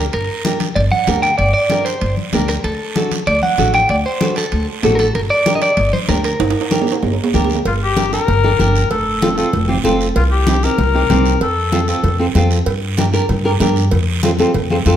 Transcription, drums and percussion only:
0.13 high conga soft
0.13 high timbale medium
0.13 long guiro medium
0.45 high conga loud
0.45 high timbale medium
0.45 short guiro medium
0.60 high conga medium
0.60 high timbale medium
0.60 short guiro medium
0.76 high conga soft
0.76 high timbale medium
0.76 long guiro medium
0.92 high conga medium
1.07 high conga medium
1.07 high timbale medium
1.07 low timbale medium
1.07 short guiro medium
1.23 high timbale medium
1.23 short guiro medium
1.38 high conga soft
1.38 high timbale medium
1.38 long guiro medium
1.70 high conga medium
1.70 high timbale medium
1.70 short guiro medium
1.86 high timbale medium
1.86 short guiro medium
2.01 high conga soft
2.01 high timbale medium
2.01 long guiro medium
2.17 high conga medium
2.33 high conga medium
2.33 high timbale medium
2.33 low timbale medium
2.33 short guiro medium
2.48 high timbale medium
2.48 short guiro medium
2.64 high conga soft
2.64 high timbale medium
2.64 long guiro medium
2.96 high conga medium
2.96 high timbale medium
2.96 short guiro medium
3.11 high conga medium
3.11 high timbale medium
3.11 short guiro medium
3.27 high conga soft
3.27 high timbale medium
3.27 long guiro medium
3.43 high conga medium
3.58 high conga medium
3.58 high timbale medium
3.58 short guiro medium
3.74 high timbale medium
3.74 short guiro medium
3.89 high conga soft
3.89 high timbale medium
3.89 long guiro medium
4.21 high conga loud
4.21 high timbale medium
4.21 short guiro medium
4.36 high timbale medium
4.36 short guiro medium
4.52 high conga soft
4.52 high timbale medium
4.52 long guiro medium
4.83 high conga medium
4.83 high timbale medium
4.83 low timbale medium
4.83 short guiro medium
4.99 high timbale medium
4.99 short guiro medium
5.15 high conga soft
5.15 high timbale medium
5.15 long guiro medium
5.46 high conga loud
5.46 high timbale medium
5.46 short guiro medium
5.62 high timbale medium
5.62 short guiro medium
5.77 high conga soft
5.77 high timbale medium
5.77 long guiro medium
5.93 high conga medium
6.08 high conga medium
6.08 high timbale medium
6.08 low timbale medium
6.08 short guiro medium
6.24 high timbale medium
6.24 short guiro medium
6.40 high conga soft
6.40 high timbale medium
6.40 long guiro medium
6.51 high timbale medium
6.61 high timbale medium
6.71 high conga medium
6.71 high timbale medium
6.71 short guiro medium
6.82 low timbale loud
6.87 short guiro medium
6.92 high timbale medium
7.03 high conga soft
7.03 low timbale medium
7.03 long guiro medium
7.13 low timbale medium
7.24 low timbale medium
7.34 high conga medium
7.34 low timbale medium
7.34 short guiro medium
7.44 low timbale medium
7.50 short guiro medium
7.55 low timbale medium
7.65 cowbell loud
7.65 high conga soft
7.65 long guiro medium
7.96 cowbell medium
7.96 high conga medium
7.96 short guiro medium
8.13 short guiro medium
8.28 cowbell medium
8.28 high conga soft
8.28 low conga medium
8.28 long guiro medium
8.44 high conga medium
8.60 cowbell medium
8.60 high conga medium
8.60 low conga medium
8.60 short guiro medium
8.76 short guiro medium
8.91 cowbell medium
8.91 high conga soft
8.91 long guiro medium
9.22 cowbell medium
9.22 high conga loud
9.22 short guiro medium
9.38 short guiro medium
9.53 cowbell medium
9.53 high conga soft
9.53 low conga medium
9.53 long guiro medium
9.69 high conga medium
9.85 cowbell medium
9.85 high conga medium
9.85 low conga medium
9.85 short guiro medium
10.01 short guiro medium
10.16 cowbell loud
10.16 high conga soft
10.16 long guiro medium
10.47 cowbell medium
10.47 high conga loud
10.47 short guiro medium
10.63 short guiro medium
10.78 cowbell medium
10.78 high conga soft
10.78 low conga medium
10.78 long guiro medium
11.10 cowbell medium
11.10 high conga medium
11.10 low conga medium
11.10 low timbale medium
11.10 short guiro medium
11.25 short guiro medium
11.41 cowbell loud
11.41 long guiro medium
11.72 cowbell medium
11.72 high conga loud
11.72 short guiro medium
11.88 short guiro medium
12.04 cowbell medium
12.04 high conga soft
12.04 low conga medium
12.04 long guiro medium
12.35 cowbell medium
12.35 high conga medium
12.35 low timbale medium
12.35 short guiro medium
12.51 short guiro medium
12.66 cowbell loud
12.66 high conga soft
12.66 long guiro medium
12.97 cowbell medium
12.97 high conga loud
12.97 short guiro medium
13.14 short guiro medium
13.29 cowbell medium
13.29 high conga soft
13.29 low conga medium
13.29 long guiro medium
13.60 cowbell medium
13.60 high conga medium
13.60 low timbale medium
13.60 short guiro medium
13.76 short guiro medium
13.91 cowbell loud
13.91 high conga soft
13.91 low conga medium
13.91 long guiro medium
14.23 cowbell medium
14.23 high conga loud
14.23 short guiro medium
14.39 high conga medium
14.39 short guiro medium
14.54 cowbell medium
14.54 high conga soft
14.54 low conga medium
14.54 long guiro medium
14.70 high conga medium
14.86 cowbell medium
14.86 high conga medium
14.86 low conga medium
14.86 short guiro medium

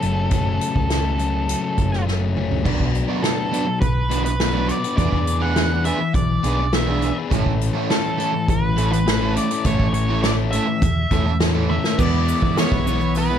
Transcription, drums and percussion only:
0.02 closed hi-hat medium
0.31 kick loud
0.31 closed hi-hat medium
0.61 closed hi-hat medium
0.76 kick medium
0.90 snare loud
0.90 closed hi-hat medium
1.19 closed hi-hat medium
1.49 closed hi-hat medium
1.78 kick medium
1.78 closed hi-hat medium
1.93 snare soft
2.08 snare soft
2.37 mid tom medium
2.51 floor tom medium
2.66 kick loud
2.66 crash loud
2.80 kick medium
2.95 closed hi-hat medium
3.24 snare medium
3.24 closed hi-hat medium
3.54 closed hi-hat medium
3.82 kick loud
3.82 closed hi-hat medium
4.11 closed hi-hat medium
4.26 closed hi-hat medium
4.40 snare loud
4.40 closed hi-hat medium
4.69 closed hi-hat medium
4.84 closed hi-hat medium
4.98 kick loud
4.98 closed hi-hat medium
5.12 kick medium
5.27 closed hi-hat medium
5.56 snare loud
5.56 closed hi-hat medium
5.85 closed hi-hat medium
6.14 kick loud
6.14 closed hi-hat medium
6.44 closed hi-hat medium
6.73 snare loud
6.73 closed hi-hat medium
7.02 closed hi-hat medium
7.31 kick loud
7.31 closed hi-hat medium
7.46 kick medium
7.61 closed hi-hat medium
7.90 snare loud
7.90 closed hi-hat medium
8.20 closed hi-hat medium
8.48 kick loud
8.48 closed hi-hat medium
8.78 closed hi-hat medium
8.93 closed hi-hat medium
9.08 snare loud
9.08 closed hi-hat medium
9.37 closed hi-hat medium
9.51 closed hi-hat medium
9.65 kick loud
9.65 closed hi-hat medium
9.80 kick medium
9.94 closed hi-hat medium
10.24 snare loud
10.24 closed hi-hat medium
10.53 closed hi-hat medium
10.82 kick loud
10.82 closed hi-hat medium
11.11 kick medium
11.11 closed hi-hat medium
11.40 snare loud
11.40 closed hi-hat medium
11.70 high tom medium
11.84 snare medium
11.99 kick loud
11.99 crash loud
11.99 shaker medium
12.28 open hi-hat medium
12.28 shaker medium
12.42 kick medium
12.57 snare loud
12.57 open hi-hat medium
12.57 shaker medium
12.72 kick medium
12.87 open hi-hat medium
12.87 shaker medium
13.01 shaker soft
13.15 open hi-hat medium
13.15 shaker medium

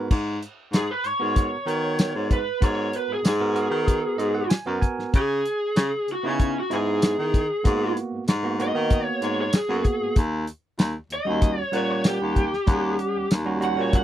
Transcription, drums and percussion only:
0.11 kick medium
0.11 crash medium
0.43 closed hi-hat medium
0.73 snare loud
0.73 closed hi-hat medium
0.73 tambourine medium
1.04 closed hi-hat medium
1.36 kick medium
1.36 closed hi-hat medium
1.68 closed hi-hat medium
1.99 snare loud
1.99 closed hi-hat medium
1.99 tambourine loud
2.31 kick medium
2.31 closed hi-hat medium
2.62 kick medium
2.62 closed hi-hat medium
2.93 closed hi-hat medium
3.25 snare loud
3.25 closed hi-hat medium
3.25 tambourine loud
3.56 closed hi-hat medium
3.88 kick medium
3.88 closed hi-hat medium
4.19 closed hi-hat medium
4.50 snare loud
4.50 closed hi-hat medium
4.50 tambourine loud
4.82 kick medium
4.82 closed hi-hat soft
4.99 snare soft
5.14 kick loud
5.14 closed hi-hat medium
5.46 closed hi-hat medium
5.76 snare loud
5.76 closed hi-hat medium
5.76 tambourine medium
6.08 closed hi-hat soft
6.39 kick medium
6.39 closed hi-hat medium
6.71 closed hi-hat medium
7.02 snare loud
7.02 closed hi-hat medium
7.02 tambourine loud
7.34 kick medium
7.34 closed hi-hat medium
7.65 kick loud
7.65 closed hi-hat medium
7.97 closed hi-hat medium
8.28 snare loud
8.28 closed hi-hat medium
8.28 tambourine loud
8.60 closed hi-hat medium
8.90 kick medium
8.90 closed hi-hat medium
9.22 closed hi-hat medium
9.53 snare loud
9.53 closed hi-hat medium
9.53 tambourine loud
9.84 kick medium
9.84 closed hi-hat medium
10.16 kick loud
10.16 closed hi-hat medium
10.47 closed hi-hat medium
10.79 snare loud
10.79 closed hi-hat medium
10.79 tambourine loud
11.10 closed hi-hat medium
11.42 kick medium
11.42 closed hi-hat medium
11.73 closed hi-hat medium
12.04 snare loud
12.04 closed hi-hat medium
12.04 tambourine loud
12.36 kick medium
12.36 closed hi-hat medium
12.53 snare soft
12.67 kick loud
12.67 closed hi-hat medium
12.99 closed hi-hat medium
13.31 snare loud
13.31 closed hi-hat medium
13.31 tambourine loud
13.62 closed hi-hat medium
13.93 kick medium
13.93 closed hi-hat medium

